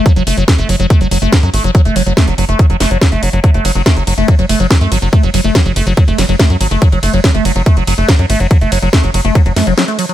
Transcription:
<<
  \new Staff \with { instrumentName = "Acid bass" } { \clef bass \time 4/4 \key fis \minor \tempo 4 = 142 fis16 fis16 a16 fis16 fis16 a16 fis16 fis16 a16 fis16 fis16 a16 fis16 fis16 a16 fis16 | fis16 a16 fis16 fis16 a16 fis16 fis16 a16 fis16 fis16 a16 fis16 fis16 a16 fis16 fis16 | fis16 a16 fis16 fis16 a16 fis16 fis16 a16 fis16 fis16 a16 fis16 fis16 a16 fis16 fis16 | a16 fis16 fis16 a16 fis16 fis16 a16 fis16 fis16 a16 fis16 fis16 a16 fis16 fis16 a16 |
fis16 fis16 a16 fis16 fis16 a16 fis16 fis16 a16 fis16 fis16 a16 fis16 fis16 a16 fis16 | fis16 a16 fis16 fis16 a16 fis16 fis16 a16 fis16 fis16 a16 fis16 fis16 a16 fis16 fis16 | }
  \new Staff \with { instrumentName = "Analog synth bass" } { \clef bass \time 4/4 \key fis \minor r16 fis,,16 fis,,16 fis,,16 r16 fis,,16 fis,,16 fis,,16 r16 fis,,16 fis,,16 fis,,16 r16 fis,16 gis,,16 fis,,16 | r16 fis,,16 fis,,16 fis,,16 r16 fis,,16 fis,,16 fis,,16 r16 fis,,16 fis,,16 fis,,16 r16 fis,,16 fis,,16 fis,,16 | r16 fis,,16 fis,,16 fis,,16 r16 fis,,16 fis,,16 fis,,16 r16 fis,,16 fis,,16 fis,,16 r16 fis,16 gis,,16 fis,,16 | r16 fis,,16 fis,,16 fis,,16 r16 fis,,16 fis,,16 fis,,16 r16 fis,,16 fis,,16 fis,,16 r16 fis,16 gis,,16 fis,,16 |
r16 fis,,16 fis,,16 fis,,16 r16 fis,,16 fis,,16 fis,,16 r16 fis,,16 fis,,16 fis,,16 r16 fis,16 gis,,16 fis,,16 | r16 fis,,16 fis,,16 fis,,16 r16 fis,,16 fis,,16 fis,,16 r16 fis,,16 fis,16 fis,,16 r4 | }
  \new DrumStaff \with { instrumentName = "Drums" } \drummode { \time 4/4 <hh bd>16 hh16 hho16 hh16 <hh bd sn>16 hh16 hho16 hh16 <hh bd>16 hh16 hho16 hh16 <hh bd sn>16 hh16 hho16 hh16 | <hh bd>16 hh16 hho16 hh16 <hh bd sn>16 hh16 hho16 hh16 <hh bd>16 hh16 <hho sn>16 hh16 <hh bd sn>16 hh16 hho16 hh16 | <hh bd>16 hh16 <hho cymr>16 hh16 <hh bd sn>16 hh16 <hho cymr>16 hh16 <hh bd>16 hh16 <hho cymr>16 hh16 <hh bd sn>16 hh16 <hho cymr>16 hh16 | <hh bd>16 hh16 <hho cymr>16 hh16 <hh bd sn>16 hh16 <hho cymr>16 hh16 <hh bd>16 hh16 <hho cymr sn>16 hh16 <hh bd sn>16 hh16 <hho cymr>16 hh16 |
<hh bd>16 hh16 <hho cymr>16 hh16 <hh bd sn>16 hh16 <hho cymr>16 hh16 <hh bd>16 hh16 <hho cymr>16 hh16 <hh bd sn>16 hh16 <hho cymr>16 hh16 | <hh bd>16 hh16 <hho cymr>16 hh16 <hh bd sn>16 hh16 <hho cymr>16 hh16 <hh bd>16 hh16 <hho cymr sn>16 hh16 <hh sn>16 hh16 <hho cymr>16 hh16 | }
>>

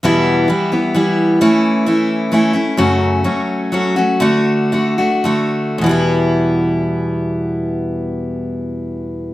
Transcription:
\new Staff \with { instrumentName = "Steel-string acoustic guitar" } { \time 3/4 \key e \dorian \tempo 4 = 121 <e, b, e g b e'>4 <e g b e'>8 <e g b e'>8 <e g b e'>4 | <e a cis' e'>4 <e a cis' e'>4 <e a cis' e'>8 <a cis' e'>8 | <fis, cis fis a cis' fis'>4 <fis a cis' fis'>4 <fis a cis' fis'>8 <fis a cis' fis'>8 | <d a d' fis'>4 <d a d' fis'>8 <a d' fis'>8 <d a d' fis'>4 |
<e, b, e g b e'>2.~ | <e, b, e g b e'>2. | }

